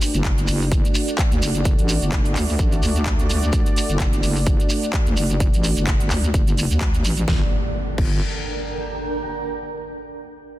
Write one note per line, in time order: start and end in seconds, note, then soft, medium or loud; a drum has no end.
0.00 7.24 A3 medium
0.00 7.24 D4 medium
0.00 7.27 D4 medium
0.00 7.24 F#4 medium
0.00 7.24 D5 medium
0.00 7.28 F#5 medium
0.00 open hi-hat loud
0.00 shekere medium
0.06 7.28 A4 medium
0.14 0.46 F#1 medium
0.14 closed hi-hat soft
0.14 shekere soft
0.25 kick loud
0.25 clap loud
0.25 closed hi-hat medium
0.25 shekere medium
0.38 closed hi-hat soft
0.38 shekere soft
0.48 0.83 F#1 loud
0.48 open hi-hat loud
0.48 shekere medium
0.62 shekere soft
0.72 kick loud
0.72 closed hi-hat medium
0.72 shekere medium
0.85 closed hi-hat soft
0.85 shekere soft
0.95 open hi-hat loud
0.95 shekere loud
1.08 closed hi-hat soft
1.08 shekere soft
1.18 kick loud
1.18 clap loud
1.18 closed hi-hat medium
1.18 shekere soft
1.32 1.40 D2 loud
1.32 closed hi-hat soft
1.32 shekere soft
1.42 1.76 F#1 medium
1.42 open hi-hat loud
1.42 shekere medium
1.55 closed hi-hat soft
1.55 shekere soft
1.65 kick loud
1.65 closed hi-hat medium
1.65 shekere medium
1.78 2.00 A1 medium
1.78 closed hi-hat medium
1.78 shekere soft
1.89 open hi-hat loud
1.89 shekere medium
2.02 2.34 F#1 loud
2.02 closed hi-hat soft
2.02 shekere soft
2.12 kick loud
2.12 clap loud
2.12 closed hi-hat medium
2.12 shekere medium
2.25 closed hi-hat medium
2.25 shekere soft
2.36 2.57 D2 medium
2.36 clap medium
2.36 open hi-hat loud
2.36 shekere medium
2.49 shekere soft
2.59 2.81 A1 loud
2.59 kick loud
2.59 shekere medium
2.72 closed hi-hat soft
2.72 shekere soft
2.82 3.17 D2 medium
2.82 open hi-hat loud
2.82 shekere medium
2.96 closed hi-hat soft
2.96 shekere soft
3.06 kick loud
3.06 clap loud
3.06 closed hi-hat medium
3.06 shekere soft
3.19 3.51 D2 loud
3.19 closed hi-hat medium
3.19 shekere soft
3.29 open hi-hat loud
3.29 shekere medium
3.43 closed hi-hat soft
3.43 shekere soft
3.53 3.64 D2 loud
3.53 kick loud
3.53 closed hi-hat medium
3.53 shekere soft
3.66 closed hi-hat medium
3.66 shekere soft
3.76 open hi-hat loud
3.76 shekere medium
3.89 4.21 F#1 loud
3.89 closed hi-hat soft
3.89 shekere soft
4.00 kick loud
4.00 clap loud
4.00 closed hi-hat medium
4.00 shekere soft
4.13 closed hi-hat medium
4.13 shekere soft
4.23 4.58 F#1 loud
4.23 open hi-hat loud
4.23 shekere medium
4.36 shekere soft
4.46 kick loud
4.46 closed hi-hat medium
4.46 shekere medium
4.60 closed hi-hat soft
4.60 shekere soft
4.70 open hi-hat loud
4.70 shekere medium
4.83 closed hi-hat soft
4.83 shekere soft
4.93 kick loud
4.93 clap loud
4.93 closed hi-hat medium
4.93 shekere soft
5.06 5.15 D2 loud
5.06 closed hi-hat medium
5.06 shekere soft
5.17 5.51 F#1 medium
5.17 open hi-hat loud
5.17 shekere medium
5.30 closed hi-hat soft
5.30 shekere soft
5.40 kick loud
5.40 closed hi-hat medium
5.40 shekere soft
5.53 5.75 A1 medium
5.53 closed hi-hat medium
5.53 shekere soft
5.64 open hi-hat loud
5.64 shekere medium
5.77 6.09 F#1 loud
5.77 closed hi-hat soft
5.77 shekere soft
5.87 kick loud
5.87 clap loud
5.87 closed hi-hat medium
5.87 shekere soft
6.00 closed hi-hat medium
6.00 shekere soft
6.11 6.32 D2 loud
6.11 clap medium
6.11 open hi-hat loud
6.11 shekere medium
6.24 closed hi-hat soft
6.24 shekere soft
6.34 6.69 F#1 medium
6.34 kick loud
6.34 closed hi-hat medium
6.34 shekere soft
6.47 closed hi-hat medium
6.47 shekere soft
6.57 open hi-hat medium
6.57 shekere medium
6.71 7.03 D2 loud
6.71 closed hi-hat soft
6.71 shekere soft
6.80 kick loud
6.80 clap loud
6.80 closed hi-hat medium
6.80 shekere soft
6.94 closed hi-hat medium
6.94 shekere soft
7.04 7.26 A1 medium
7.04 open hi-hat loud
7.04 shekere medium
7.17 closed hi-hat soft
7.17 shekere soft
7.28 7.42 G1 loud
7.28 7.50 A#3 medium
7.28 7.50 D4 medium
7.28 9.11 D4 medium
7.28 7.50 G4 medium
7.28 7.50 D5 medium
7.28 kick loud
7.28 snare medium
7.28 impact medium
7.36 9.11 A#4 medium
7.43 9.11 G5 medium
7.98 8.20 G1 loud
7.98 kick loud
7.98 crash medium